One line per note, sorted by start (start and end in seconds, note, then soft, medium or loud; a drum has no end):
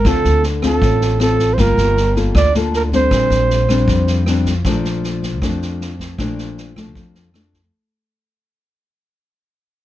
0.05 0.23 D2 medium
0.05 0.80 D3 medium
0.05 0.44 C4 medium
0.05 0.44 F4 medium
0.05 0.44 A4 medium
0.05 0.45 A4 medium
0.05 kick medium
0.05 cross-stick medium
0.05 snare soft
0.24 0.78 D2 medium
0.24 snare soft
0.43 snare soft
0.62 1.17 C4 medium
0.62 1.17 F4 medium
0.62 1.18 A4 medium
0.62 kick soft
0.62 cross-stick medium
0.62 snare soft
0.82 1.54 A1 medium
0.82 1.57 A2 soft
0.82 kick medium
0.82 snare soft
1.01 snare soft
1.20 1.56 C4 medium
1.20 1.56 F4 medium
1.20 1.56 A4 medium
1.20 1.55 A4 medium
1.20 cross-stick medium
1.20 snare soft
1.39 kick soft
1.39 snare soft
1.54 1.61 C5 medium
1.58 1.76 G1 medium
1.58 2.34 G3 medium
1.58 1.97 A#3 medium
1.58 1.97 F4 medium
1.58 2.17 A#4 medium
1.58 kick soft
1.58 cross-stick medium
1.58 snare soft
1.77 2.31 G1 medium
1.77 snare soft
1.97 snare soft
2.16 2.51 A#3 medium
2.16 2.52 F4 medium
2.16 2.52 A4 medium
2.16 kick soft
2.16 snare soft
2.35 3.08 D2 medium
2.35 3.10 D3 medium
2.35 2.54 D5 medium
2.35 kick medium
2.35 cross-stick medium
2.35 snare soft
2.54 2.90 A#3 medium
2.54 2.90 F4 medium
2.54 2.90 A4 medium
2.54 snare soft
2.73 2.84 A#4 medium
2.73 snare soft
2.92 3.66 G3 medium
2.92 3.66 C4 soft
2.92 3.67 D4 medium
2.92 4.24 C5 medium
2.92 kick soft
2.92 snare soft
3.11 3.29 A#1 medium
3.11 3.87 A#2 medium
3.11 kick medium
3.11 cross-stick medium
3.11 snare soft
3.30 3.84 A#1 medium
3.30 snare soft
3.50 snare soft
3.69 4.24 G3 soft
3.69 4.24 C4 medium
3.69 4.24 D4 medium
3.69 kick soft
3.69 cross-stick soft
3.69 snare soft
3.88 4.61 F2 medium
3.88 4.64 F3 soft
3.88 kick medium
3.88 snare soft
4.07 snare soft
4.26 4.52 G3 medium
4.26 4.52 C4 medium
4.26 4.53 D4 medium
4.26 cross-stick soft
4.26 snare soft
4.45 kick soft
4.45 snare soft
4.65 5.42 A#1 medium
4.65 5.40 A#2 medium
4.65 5.39 F3 medium
4.65 5.40 A3 medium
4.65 5.40 D4 medium
4.65 kick medium
4.65 cross-stick medium
4.65 snare soft
4.84 snare soft
5.04 snare soft
5.22 kick soft
5.22 snare soft
5.42 6.15 F2 medium
5.42 6.17 F2 soft
5.42 5.94 F3 soft
5.42 5.94 A3 soft
5.42 5.94 D4 medium
5.42 kick medium
5.42 cross-stick medium
5.42 snare soft
5.62 snare soft
5.81 snare soft
5.99 kick soft
5.99 snare soft
6.18 6.96 A#1 medium
6.18 6.94 A#2 medium
6.18 6.74 F3 medium
6.18 6.74 A3 soft
6.18 6.74 D4 medium
6.18 kick soft
6.18 cross-stick soft
6.18 snare soft
6.38 snare soft
6.57 snare soft
6.76 7.32 F3 medium
6.76 7.32 A3 soft
6.76 7.32 D4 soft
6.76 kick soft
6.76 cross-stick soft
6.76 snare soft
6.95 7.69 F2 medium
6.95 7.72 F2 soft
6.95 kick medium
6.95 snare soft
7.15 snare soft
7.34 7.59 F3 medium
7.34 7.60 A3 soft
7.34 7.60 D4 soft
7.34 cross-stick soft
7.34 snare soft
7.53 kick soft
7.53 snare soft